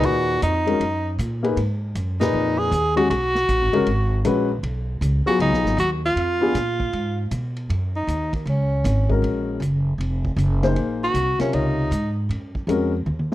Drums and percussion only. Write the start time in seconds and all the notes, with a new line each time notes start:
0.03 ride
0.42 hi-hat pedal, ride
0.67 ride
0.81 ride
1.19 hi-hat pedal, ride
1.44 ride
1.57 ride
1.95 hi-hat pedal, ride
2.21 snare, ride
2.72 hi-hat pedal, ride
2.97 ride
3.11 ride
3.35 snare
3.49 hi-hat pedal, ride
3.73 ride
3.86 ride
4.25 hi-hat pedal, ride
4.63 ride
5.02 hi-hat pedal, ride
5.40 ride
5.53 snare
5.66 snare
5.78 hi-hat pedal, ride
6.17 ride
6.55 snare, hi-hat pedal, ride
6.80 kick
6.93 ride
7.31 hi-hat pedal, ride
7.56 ride
7.70 ride
8.08 hi-hat pedal, ride
8.33 kick, ride
8.47 ride
8.85 snare, hi-hat pedal, ride
9.10 kick
9.24 ride
9.62 hi-hat pedal, ride
10.00 ride
10.25 kick
10.38 hi-hat pedal, ride
10.63 snare, ride
10.76 ride
11.14 hi-hat pedal, ride
11.39 snare, ride
11.53 ride
11.92 hi-hat pedal, ride
12.30 ride
12.55 kick
12.69 hi-hat pedal, ride
13.06 high tom
13.19 high tom